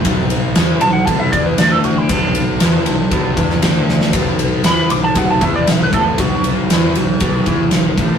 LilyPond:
<<
  \new Staff \with { instrumentName = "Lead electric guitar" } { \time 4/4 \key b \minor \tempo 4 = 117 r4. a''16 fis''16 a''16 e''16 d''16 b'16 d''16 a'16 fis'16 e'16 | d'2. r4 | r4 b''8 d'''16 a''16 fis''16 a''16 e''16 d''16 e''16 b'16 a'8 | fis'2. r4 | }
  \new Staff \with { instrumentName = "Distorted electric guitar" } { \clef bass \time 4/4 \key b \minor <b, fis b>4 <e b e'>8 <b, fis>8 <b, fis b>8 <e b e'>8 <d a d'>4 | <b, fis b>4 <e b e'>8 <b, fis>8 <b, fis b>8 <e b e'>8 <d a d'>4 | <b, fis b>4 <e b e'>8 <b, fis>8 <b, fis b>8 <e b e'>8 <b, fis>8 <a, e a>8 | <b, fis b>4 <e b e'>8 <b, fis>8 <b, fis b>8 <e b e'>8 <b, fis>8 <a, e a>8 | }
  \new Staff \with { instrumentName = "Picked electric bass" } { \clef bass \time 4/4 \key b \minor b,,4 e,8 b,,8 b,,8 e,8 d,4 | b,,4 e,8 b,,8 b,,8 e,8 d,4 | b,,4 e,8 b,,8 b,,8 e,8 b,,8 a,,8 | b,,4 e,8 b,,8 b,,8 e,8 b,,8 a,,8 | }
  \new DrumStaff \with { instrumentName = "Drums" } \drummode { \time 4/4 <bd cymr>8 cymr8 <cymr sn>8 cymr8 <bd cymr>8 <bd cymr>8 <cymr sn>8 cymr8 | <bd cymr>8 cymr8 <cymr sn>8 cymr8 <bd cymr>8 <bd cymr>16 sn16 <cymr sn>8 sn16 sn16 | <bd cymr>8 cymr8 <cymr sn>8 cymr8 <bd cymr>8 <bd cymr>8 <cymr sn>8 <bd cymr>8 | <bd cymr>8 cymr8 <cymr sn>8 cymr8 <bd cymr>8 <bd cymr>8 <cymr sn>8 <bd cymr>8 | }
>>